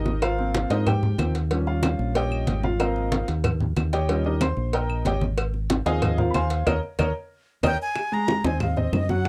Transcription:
Already playing: G#1 D#4 G4 A#4 D#5
0.06 high conga
0.22 F4 A#4 C5 F5, cowbell, high conga, claves
0.38 F3 A#3 C4, high conga
0.54 cowbell, high conga
0.70 G#2 D#4 A#4 C5 D#5, cowbell, high conga
0.87 G4 G5, cowbell, high conga, low conga, claves
1.03 high conga, low conga
1.18 D#2 F3 A#3 C4, cowbell, high conga, claves
1.35 cowbell, high conga
1.50 F3 G3 C#4, cowbell, high conga
1.67 F4 F5, high conga
1.83 cowbell, high conga, claves
1.99 A#1, high conga
2.15 G4 C#5 D#5 G5, cowbell, high conga
2.31 high conga, claves
2.47 G#1, cowbell, high conga
2.64 F4 F5, high conga
2.79 F3 A#3 C4 A#4 D#5 F5 A#5, cowbell, high conga, claves
2.96 high conga
3.12 cowbell, high conga
3.28 D#2, cowbell, high conga
3.44 cowbell, high conga, low conga, claves
3.60 high conga, low conga
3.76 D#2, cowbell, high conga, claves
3.93 G4 C#5 D#5 G5, cowbell, high conga
4.09 F3 G3 C#4, cowbell, high conga
4.24 D#4 G4 A#4 D#5, high conga
4.41 C5 C6, cowbell, high conga, claves
4.57 A#1, high conga
4.73 A#4 D#5 G5 A#5, cowbell, high conga
4.89 high conga, claves
5.05 G#1 G4 C#5 D#5 G5, cowbell, high conga
5.21 high conga
5.37 cowbell, high conga, claves
5.54 high conga
5.70 cowbell, high conga
5.85 D#2 F3 A#3 C4 G#4 D#5 F5 G#5, cowbell, high conga
6.02 cowbell, high conga, low conga, claves
6.18 F4 A#4 C5 F5, high conga, low conga
6.30 D#2 B5, cowbell, high conga
6.35 C5 F5 G#5 C6, claves
6.50 cowbell, high conga
6.67 D#2 A#4 C#5 D#5, cowbell, high conga, claves
6.99 D#2 A#4 C#5 D#5, cowbell, high conga, claves
7.63 D#2 A#4 C#5 D#5 G5, cowbell, high conga, claves
7.82 G#5
7.96 high bongo, high conga, claves
8.12 G#3 G#4 G#5 A#5, high bongo, high conga
8.28 high bongo, high conga
8.44 D#2 C4 C5 D#5 G#5, high bongo, high conga
8.60 F5, high bongo, high conga, low conga, claves
8.77 C4 C5 D#5, high bongo, high conga, low conga
8.92 F#2 D#5, high bongo, low bongo, high conga, claves
9.09 F#3 F#4 F#5, high conga
9.25 F#3, high bongo

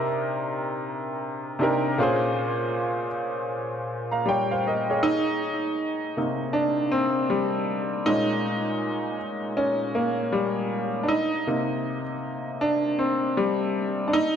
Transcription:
Already playing: C3 D4 D#4 G4 A#4
1.59 C3 D4 D#4 G4
1.63 A#4
1.98 A#2 C#4 F4 G#4
2.03 C5
4.11 F5 A#5
4.26 G3 C#5 G5
4.51 C5 F5
4.67 A#4 D#5
4.90 G#4 C#5
5.03 D#4
6.17 C3 A#3 D#4
6.53 D4
6.91 C4
7.30 G3
8.06 A#2 G#3 C#4 D#4
9.57 C#4
9.95 A#3
10.32 G3
11.03 D4
11.08 D#4
11.47 C3 A#3 D#4
12.61 D4
12.99 C4
13.37 G3
14.08 D4
14.13 D#4

